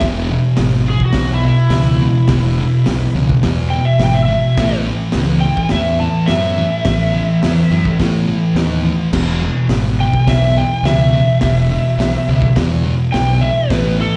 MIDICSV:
0, 0, Header, 1, 5, 480
1, 0, Start_track
1, 0, Tempo, 570885
1, 11, Time_signature, 4, 2, 24, 8
1, 11911, End_track
2, 0, Start_track
2, 0, Title_t, "Electric slide guitar"
2, 0, Program_c, 0, 29
2, 756, Note_on_c, 0, 68, 95
2, 858, Note_off_c, 0, 68, 0
2, 885, Note_on_c, 0, 66, 83
2, 1098, Note_off_c, 0, 66, 0
2, 1127, Note_on_c, 0, 64, 79
2, 1223, Note_off_c, 0, 64, 0
2, 1240, Note_on_c, 0, 64, 91
2, 2625, Note_off_c, 0, 64, 0
2, 3113, Note_on_c, 0, 79, 89
2, 3232, Note_off_c, 0, 79, 0
2, 3239, Note_on_c, 0, 76, 90
2, 3355, Note_off_c, 0, 76, 0
2, 3392, Note_on_c, 0, 79, 90
2, 3482, Note_on_c, 0, 76, 83
2, 3492, Note_off_c, 0, 79, 0
2, 3565, Note_off_c, 0, 76, 0
2, 3575, Note_on_c, 0, 76, 90
2, 4051, Note_off_c, 0, 76, 0
2, 4546, Note_on_c, 0, 79, 94
2, 4783, Note_off_c, 0, 79, 0
2, 4811, Note_on_c, 0, 76, 100
2, 5036, Note_off_c, 0, 76, 0
2, 5042, Note_on_c, 0, 81, 74
2, 5266, Note_on_c, 0, 76, 101
2, 5271, Note_off_c, 0, 81, 0
2, 6675, Note_off_c, 0, 76, 0
2, 8411, Note_on_c, 0, 79, 94
2, 8636, Note_off_c, 0, 79, 0
2, 8649, Note_on_c, 0, 76, 82
2, 8876, Note_off_c, 0, 76, 0
2, 8890, Note_on_c, 0, 79, 81
2, 9116, Note_off_c, 0, 79, 0
2, 9128, Note_on_c, 0, 76, 100
2, 10532, Note_off_c, 0, 76, 0
2, 11034, Note_on_c, 0, 79, 103
2, 11272, Note_off_c, 0, 79, 0
2, 11277, Note_on_c, 0, 76, 89
2, 11523, Note_off_c, 0, 76, 0
2, 11523, Note_on_c, 0, 71, 96
2, 11757, Note_off_c, 0, 71, 0
2, 11778, Note_on_c, 0, 69, 93
2, 11889, Note_off_c, 0, 69, 0
2, 11911, End_track
3, 0, Start_track
3, 0, Title_t, "Distorted electric guitar"
3, 0, Program_c, 1, 30
3, 0, Note_on_c, 1, 40, 76
3, 3, Note_on_c, 1, 47, 88
3, 7, Note_on_c, 1, 52, 102
3, 228, Note_off_c, 1, 40, 0
3, 231, Note_off_c, 1, 47, 0
3, 233, Note_off_c, 1, 52, 0
3, 257, Note_on_c, 1, 40, 71
3, 258, Note_on_c, 1, 47, 81
3, 468, Note_off_c, 1, 40, 0
3, 469, Note_off_c, 1, 47, 0
3, 484, Note_on_c, 1, 40, 75
3, 486, Note_on_c, 1, 47, 85
3, 701, Note_off_c, 1, 40, 0
3, 702, Note_off_c, 1, 47, 0
3, 729, Note_on_c, 1, 40, 76
3, 733, Note_on_c, 1, 47, 78
3, 943, Note_off_c, 1, 40, 0
3, 945, Note_off_c, 1, 47, 0
3, 956, Note_on_c, 1, 40, 79
3, 962, Note_on_c, 1, 47, 87
3, 1176, Note_off_c, 1, 40, 0
3, 1179, Note_off_c, 1, 47, 0
3, 1205, Note_on_c, 1, 40, 68
3, 1207, Note_on_c, 1, 47, 83
3, 1421, Note_off_c, 1, 40, 0
3, 1421, Note_off_c, 1, 47, 0
3, 1446, Note_on_c, 1, 40, 78
3, 1452, Note_on_c, 1, 47, 79
3, 1661, Note_off_c, 1, 40, 0
3, 1664, Note_off_c, 1, 47, 0
3, 1688, Note_on_c, 1, 40, 68
3, 1699, Note_on_c, 1, 47, 72
3, 1901, Note_off_c, 1, 40, 0
3, 1907, Note_off_c, 1, 47, 0
3, 1931, Note_on_c, 1, 47, 77
3, 1932, Note_on_c, 1, 40, 84
3, 2143, Note_off_c, 1, 40, 0
3, 2143, Note_off_c, 1, 47, 0
3, 2181, Note_on_c, 1, 40, 74
3, 2187, Note_on_c, 1, 47, 76
3, 2387, Note_off_c, 1, 40, 0
3, 2390, Note_off_c, 1, 47, 0
3, 2406, Note_on_c, 1, 40, 73
3, 2411, Note_on_c, 1, 47, 86
3, 2619, Note_off_c, 1, 40, 0
3, 2622, Note_off_c, 1, 47, 0
3, 2647, Note_on_c, 1, 40, 76
3, 2653, Note_on_c, 1, 47, 81
3, 2860, Note_off_c, 1, 40, 0
3, 2862, Note_off_c, 1, 47, 0
3, 2884, Note_on_c, 1, 40, 75
3, 2888, Note_on_c, 1, 47, 90
3, 3098, Note_off_c, 1, 40, 0
3, 3100, Note_off_c, 1, 47, 0
3, 3135, Note_on_c, 1, 40, 71
3, 3136, Note_on_c, 1, 47, 85
3, 3343, Note_off_c, 1, 40, 0
3, 3343, Note_off_c, 1, 47, 0
3, 3366, Note_on_c, 1, 40, 84
3, 3367, Note_on_c, 1, 47, 85
3, 3578, Note_off_c, 1, 40, 0
3, 3578, Note_off_c, 1, 47, 0
3, 3601, Note_on_c, 1, 40, 68
3, 3605, Note_on_c, 1, 47, 79
3, 3815, Note_off_c, 1, 40, 0
3, 3817, Note_off_c, 1, 47, 0
3, 3847, Note_on_c, 1, 45, 93
3, 3859, Note_on_c, 1, 52, 90
3, 3861, Note_on_c, 1, 57, 98
3, 4067, Note_off_c, 1, 45, 0
3, 4074, Note_off_c, 1, 52, 0
3, 4075, Note_off_c, 1, 57, 0
3, 4091, Note_on_c, 1, 45, 75
3, 4097, Note_on_c, 1, 52, 84
3, 4300, Note_off_c, 1, 45, 0
3, 4303, Note_off_c, 1, 52, 0
3, 4328, Note_on_c, 1, 45, 74
3, 4330, Note_on_c, 1, 52, 85
3, 4538, Note_off_c, 1, 45, 0
3, 4539, Note_off_c, 1, 52, 0
3, 4571, Note_on_c, 1, 45, 70
3, 4575, Note_on_c, 1, 52, 95
3, 4779, Note_off_c, 1, 45, 0
3, 4781, Note_off_c, 1, 52, 0
3, 4813, Note_on_c, 1, 45, 89
3, 4817, Note_on_c, 1, 52, 91
3, 5020, Note_off_c, 1, 45, 0
3, 5022, Note_off_c, 1, 52, 0
3, 5053, Note_on_c, 1, 45, 69
3, 5054, Note_on_c, 1, 52, 85
3, 5260, Note_off_c, 1, 45, 0
3, 5260, Note_off_c, 1, 52, 0
3, 5293, Note_on_c, 1, 45, 83
3, 5297, Note_on_c, 1, 52, 87
3, 5500, Note_off_c, 1, 45, 0
3, 5502, Note_off_c, 1, 52, 0
3, 5529, Note_on_c, 1, 45, 66
3, 5532, Note_on_c, 1, 52, 79
3, 5738, Note_off_c, 1, 45, 0
3, 5739, Note_off_c, 1, 52, 0
3, 5773, Note_on_c, 1, 52, 80
3, 5775, Note_on_c, 1, 45, 78
3, 5980, Note_off_c, 1, 45, 0
3, 5980, Note_off_c, 1, 52, 0
3, 6007, Note_on_c, 1, 45, 72
3, 6009, Note_on_c, 1, 52, 75
3, 6216, Note_off_c, 1, 45, 0
3, 6218, Note_off_c, 1, 52, 0
3, 6255, Note_on_c, 1, 45, 73
3, 6260, Note_on_c, 1, 52, 81
3, 6460, Note_off_c, 1, 45, 0
3, 6463, Note_off_c, 1, 52, 0
3, 6486, Note_on_c, 1, 45, 73
3, 6496, Note_on_c, 1, 52, 83
3, 6696, Note_off_c, 1, 45, 0
3, 6701, Note_off_c, 1, 52, 0
3, 6729, Note_on_c, 1, 45, 85
3, 6731, Note_on_c, 1, 52, 92
3, 6937, Note_off_c, 1, 45, 0
3, 6938, Note_off_c, 1, 52, 0
3, 6959, Note_on_c, 1, 45, 73
3, 6968, Note_on_c, 1, 52, 92
3, 7172, Note_off_c, 1, 45, 0
3, 7177, Note_off_c, 1, 52, 0
3, 7206, Note_on_c, 1, 52, 89
3, 7209, Note_on_c, 1, 45, 81
3, 7416, Note_off_c, 1, 52, 0
3, 7417, Note_off_c, 1, 45, 0
3, 7441, Note_on_c, 1, 52, 82
3, 7442, Note_on_c, 1, 45, 75
3, 7654, Note_off_c, 1, 45, 0
3, 7654, Note_off_c, 1, 52, 0
3, 7684, Note_on_c, 1, 40, 91
3, 7687, Note_on_c, 1, 47, 96
3, 7697, Note_on_c, 1, 52, 106
3, 7905, Note_off_c, 1, 40, 0
3, 7906, Note_off_c, 1, 47, 0
3, 7911, Note_off_c, 1, 52, 0
3, 7923, Note_on_c, 1, 40, 72
3, 7929, Note_on_c, 1, 47, 81
3, 8135, Note_off_c, 1, 40, 0
3, 8138, Note_off_c, 1, 47, 0
3, 8175, Note_on_c, 1, 40, 69
3, 8179, Note_on_c, 1, 47, 81
3, 8381, Note_off_c, 1, 40, 0
3, 8383, Note_off_c, 1, 47, 0
3, 8412, Note_on_c, 1, 40, 78
3, 8414, Note_on_c, 1, 47, 79
3, 8619, Note_off_c, 1, 40, 0
3, 8621, Note_off_c, 1, 47, 0
3, 8645, Note_on_c, 1, 40, 77
3, 8648, Note_on_c, 1, 47, 89
3, 8856, Note_off_c, 1, 40, 0
3, 8858, Note_off_c, 1, 47, 0
3, 8895, Note_on_c, 1, 40, 72
3, 8896, Note_on_c, 1, 47, 84
3, 9102, Note_off_c, 1, 40, 0
3, 9102, Note_off_c, 1, 47, 0
3, 9127, Note_on_c, 1, 40, 87
3, 9127, Note_on_c, 1, 47, 92
3, 9338, Note_off_c, 1, 40, 0
3, 9338, Note_off_c, 1, 47, 0
3, 9358, Note_on_c, 1, 40, 70
3, 9363, Note_on_c, 1, 47, 80
3, 9574, Note_off_c, 1, 40, 0
3, 9576, Note_off_c, 1, 47, 0
3, 9607, Note_on_c, 1, 40, 81
3, 9611, Note_on_c, 1, 47, 86
3, 9819, Note_off_c, 1, 40, 0
3, 9821, Note_off_c, 1, 47, 0
3, 9836, Note_on_c, 1, 40, 83
3, 9842, Note_on_c, 1, 47, 83
3, 10054, Note_off_c, 1, 40, 0
3, 10057, Note_off_c, 1, 47, 0
3, 10072, Note_on_c, 1, 40, 78
3, 10077, Note_on_c, 1, 47, 81
3, 10292, Note_off_c, 1, 40, 0
3, 10295, Note_off_c, 1, 47, 0
3, 10321, Note_on_c, 1, 40, 68
3, 10328, Note_on_c, 1, 47, 78
3, 10537, Note_off_c, 1, 40, 0
3, 10541, Note_off_c, 1, 47, 0
3, 10560, Note_on_c, 1, 40, 84
3, 10563, Note_on_c, 1, 47, 89
3, 10777, Note_off_c, 1, 40, 0
3, 10778, Note_off_c, 1, 47, 0
3, 10794, Note_on_c, 1, 40, 80
3, 10797, Note_on_c, 1, 47, 81
3, 11015, Note_off_c, 1, 40, 0
3, 11016, Note_off_c, 1, 47, 0
3, 11032, Note_on_c, 1, 40, 86
3, 11036, Note_on_c, 1, 47, 87
3, 11254, Note_off_c, 1, 40, 0
3, 11256, Note_off_c, 1, 47, 0
3, 11279, Note_on_c, 1, 40, 72
3, 11289, Note_on_c, 1, 47, 84
3, 11498, Note_off_c, 1, 40, 0
3, 11503, Note_off_c, 1, 47, 0
3, 11520, Note_on_c, 1, 45, 90
3, 11524, Note_on_c, 1, 52, 99
3, 11528, Note_on_c, 1, 57, 99
3, 11749, Note_off_c, 1, 45, 0
3, 11751, Note_off_c, 1, 52, 0
3, 11753, Note_off_c, 1, 57, 0
3, 11767, Note_on_c, 1, 45, 78
3, 11770, Note_on_c, 1, 52, 96
3, 11911, Note_off_c, 1, 45, 0
3, 11911, Note_off_c, 1, 52, 0
3, 11911, End_track
4, 0, Start_track
4, 0, Title_t, "Fingered electric bass"
4, 0, Program_c, 2, 33
4, 11, Note_on_c, 2, 28, 94
4, 310, Note_off_c, 2, 28, 0
4, 490, Note_on_c, 2, 32, 87
4, 789, Note_off_c, 2, 32, 0
4, 954, Note_on_c, 2, 35, 88
4, 1258, Note_off_c, 2, 35, 0
4, 1428, Note_on_c, 2, 37, 85
4, 1733, Note_off_c, 2, 37, 0
4, 1915, Note_on_c, 2, 28, 91
4, 2217, Note_off_c, 2, 28, 0
4, 2421, Note_on_c, 2, 35, 92
4, 2565, Note_off_c, 2, 35, 0
4, 2648, Note_on_c, 2, 37, 93
4, 2796, Note_off_c, 2, 37, 0
4, 2881, Note_on_c, 2, 40, 90
4, 3181, Note_off_c, 2, 40, 0
4, 3352, Note_on_c, 2, 32, 87
4, 3654, Note_off_c, 2, 32, 0
4, 3844, Note_on_c, 2, 33, 100
4, 4142, Note_off_c, 2, 33, 0
4, 4330, Note_on_c, 2, 37, 94
4, 4626, Note_off_c, 2, 37, 0
4, 4806, Note_on_c, 2, 40, 93
4, 5102, Note_off_c, 2, 40, 0
4, 5290, Note_on_c, 2, 42, 83
4, 5586, Note_off_c, 2, 42, 0
4, 5761, Note_on_c, 2, 33, 93
4, 6059, Note_off_c, 2, 33, 0
4, 6255, Note_on_c, 2, 40, 84
4, 6399, Note_off_c, 2, 40, 0
4, 6480, Note_on_c, 2, 42, 86
4, 6628, Note_off_c, 2, 42, 0
4, 6722, Note_on_c, 2, 45, 90
4, 7020, Note_off_c, 2, 45, 0
4, 7185, Note_on_c, 2, 39, 90
4, 7488, Note_off_c, 2, 39, 0
4, 7673, Note_on_c, 2, 28, 100
4, 7974, Note_off_c, 2, 28, 0
4, 8149, Note_on_c, 2, 32, 92
4, 8452, Note_off_c, 2, 32, 0
4, 8632, Note_on_c, 2, 35, 97
4, 8934, Note_off_c, 2, 35, 0
4, 9106, Note_on_c, 2, 37, 96
4, 9410, Note_off_c, 2, 37, 0
4, 9600, Note_on_c, 2, 28, 98
4, 9901, Note_off_c, 2, 28, 0
4, 10071, Note_on_c, 2, 35, 94
4, 10224, Note_off_c, 2, 35, 0
4, 10327, Note_on_c, 2, 37, 91
4, 10476, Note_off_c, 2, 37, 0
4, 10561, Note_on_c, 2, 40, 89
4, 10863, Note_off_c, 2, 40, 0
4, 11051, Note_on_c, 2, 35, 88
4, 11350, Note_off_c, 2, 35, 0
4, 11519, Note_on_c, 2, 33, 107
4, 11823, Note_off_c, 2, 33, 0
4, 11911, End_track
5, 0, Start_track
5, 0, Title_t, "Drums"
5, 5, Note_on_c, 9, 38, 118
5, 6, Note_on_c, 9, 46, 62
5, 12, Note_on_c, 9, 36, 123
5, 90, Note_off_c, 9, 38, 0
5, 90, Note_off_c, 9, 46, 0
5, 96, Note_off_c, 9, 36, 0
5, 477, Note_on_c, 9, 38, 118
5, 478, Note_on_c, 9, 46, 57
5, 561, Note_off_c, 9, 38, 0
5, 562, Note_off_c, 9, 46, 0
5, 842, Note_on_c, 9, 36, 92
5, 926, Note_off_c, 9, 36, 0
5, 947, Note_on_c, 9, 38, 107
5, 948, Note_on_c, 9, 46, 60
5, 960, Note_on_c, 9, 36, 89
5, 1031, Note_off_c, 9, 38, 0
5, 1032, Note_off_c, 9, 46, 0
5, 1044, Note_off_c, 9, 36, 0
5, 1431, Note_on_c, 9, 38, 98
5, 1432, Note_on_c, 9, 46, 61
5, 1515, Note_off_c, 9, 38, 0
5, 1516, Note_off_c, 9, 46, 0
5, 1915, Note_on_c, 9, 38, 113
5, 1916, Note_on_c, 9, 46, 67
5, 1925, Note_on_c, 9, 36, 111
5, 1999, Note_off_c, 9, 38, 0
5, 2000, Note_off_c, 9, 46, 0
5, 2009, Note_off_c, 9, 36, 0
5, 2405, Note_on_c, 9, 38, 104
5, 2406, Note_on_c, 9, 46, 65
5, 2489, Note_off_c, 9, 38, 0
5, 2490, Note_off_c, 9, 46, 0
5, 2770, Note_on_c, 9, 36, 94
5, 2854, Note_off_c, 9, 36, 0
5, 2884, Note_on_c, 9, 38, 111
5, 2885, Note_on_c, 9, 46, 56
5, 2889, Note_on_c, 9, 36, 88
5, 2968, Note_off_c, 9, 38, 0
5, 2969, Note_off_c, 9, 46, 0
5, 2973, Note_off_c, 9, 36, 0
5, 3359, Note_on_c, 9, 38, 97
5, 3360, Note_on_c, 9, 46, 52
5, 3443, Note_off_c, 9, 38, 0
5, 3444, Note_off_c, 9, 46, 0
5, 3846, Note_on_c, 9, 38, 121
5, 3847, Note_on_c, 9, 46, 60
5, 3848, Note_on_c, 9, 36, 117
5, 3930, Note_off_c, 9, 38, 0
5, 3931, Note_off_c, 9, 46, 0
5, 3932, Note_off_c, 9, 36, 0
5, 4306, Note_on_c, 9, 38, 111
5, 4307, Note_on_c, 9, 46, 62
5, 4390, Note_off_c, 9, 38, 0
5, 4391, Note_off_c, 9, 46, 0
5, 4684, Note_on_c, 9, 36, 91
5, 4768, Note_off_c, 9, 36, 0
5, 4786, Note_on_c, 9, 38, 112
5, 4787, Note_on_c, 9, 46, 55
5, 4803, Note_on_c, 9, 36, 89
5, 4870, Note_off_c, 9, 38, 0
5, 4871, Note_off_c, 9, 46, 0
5, 4887, Note_off_c, 9, 36, 0
5, 5277, Note_on_c, 9, 38, 106
5, 5278, Note_on_c, 9, 46, 55
5, 5361, Note_off_c, 9, 38, 0
5, 5362, Note_off_c, 9, 46, 0
5, 5758, Note_on_c, 9, 38, 116
5, 5759, Note_on_c, 9, 46, 66
5, 5763, Note_on_c, 9, 36, 127
5, 5842, Note_off_c, 9, 38, 0
5, 5843, Note_off_c, 9, 46, 0
5, 5848, Note_off_c, 9, 36, 0
5, 6245, Note_on_c, 9, 38, 120
5, 6246, Note_on_c, 9, 46, 69
5, 6330, Note_off_c, 9, 38, 0
5, 6330, Note_off_c, 9, 46, 0
5, 6603, Note_on_c, 9, 36, 93
5, 6687, Note_off_c, 9, 36, 0
5, 6723, Note_on_c, 9, 36, 91
5, 6725, Note_on_c, 9, 38, 114
5, 6726, Note_on_c, 9, 46, 59
5, 6807, Note_off_c, 9, 36, 0
5, 6809, Note_off_c, 9, 38, 0
5, 6810, Note_off_c, 9, 46, 0
5, 7200, Note_on_c, 9, 38, 100
5, 7201, Note_on_c, 9, 46, 51
5, 7284, Note_off_c, 9, 38, 0
5, 7285, Note_off_c, 9, 46, 0
5, 7677, Note_on_c, 9, 38, 115
5, 7677, Note_on_c, 9, 49, 110
5, 7680, Note_on_c, 9, 36, 119
5, 7761, Note_off_c, 9, 38, 0
5, 7762, Note_off_c, 9, 49, 0
5, 7764, Note_off_c, 9, 36, 0
5, 8150, Note_on_c, 9, 38, 115
5, 8151, Note_on_c, 9, 46, 60
5, 8235, Note_off_c, 9, 38, 0
5, 8235, Note_off_c, 9, 46, 0
5, 8522, Note_on_c, 9, 36, 94
5, 8606, Note_off_c, 9, 36, 0
5, 8639, Note_on_c, 9, 38, 102
5, 8640, Note_on_c, 9, 36, 95
5, 8640, Note_on_c, 9, 46, 58
5, 8723, Note_off_c, 9, 38, 0
5, 8724, Note_off_c, 9, 36, 0
5, 8724, Note_off_c, 9, 46, 0
5, 9126, Note_on_c, 9, 38, 98
5, 9127, Note_on_c, 9, 46, 58
5, 9210, Note_off_c, 9, 38, 0
5, 9211, Note_off_c, 9, 46, 0
5, 9594, Note_on_c, 9, 38, 109
5, 9594, Note_on_c, 9, 46, 72
5, 9600, Note_on_c, 9, 36, 114
5, 9678, Note_off_c, 9, 38, 0
5, 9679, Note_off_c, 9, 46, 0
5, 9684, Note_off_c, 9, 36, 0
5, 10089, Note_on_c, 9, 38, 121
5, 10090, Note_on_c, 9, 46, 67
5, 10173, Note_off_c, 9, 38, 0
5, 10174, Note_off_c, 9, 46, 0
5, 10441, Note_on_c, 9, 36, 91
5, 10525, Note_off_c, 9, 36, 0
5, 10562, Note_on_c, 9, 36, 97
5, 10564, Note_on_c, 9, 38, 106
5, 10565, Note_on_c, 9, 46, 61
5, 10646, Note_off_c, 9, 36, 0
5, 10648, Note_off_c, 9, 38, 0
5, 10649, Note_off_c, 9, 46, 0
5, 11049, Note_on_c, 9, 38, 94
5, 11049, Note_on_c, 9, 46, 56
5, 11133, Note_off_c, 9, 38, 0
5, 11133, Note_off_c, 9, 46, 0
5, 11523, Note_on_c, 9, 36, 127
5, 11530, Note_on_c, 9, 38, 114
5, 11530, Note_on_c, 9, 46, 60
5, 11607, Note_off_c, 9, 36, 0
5, 11614, Note_off_c, 9, 38, 0
5, 11615, Note_off_c, 9, 46, 0
5, 11911, End_track
0, 0, End_of_file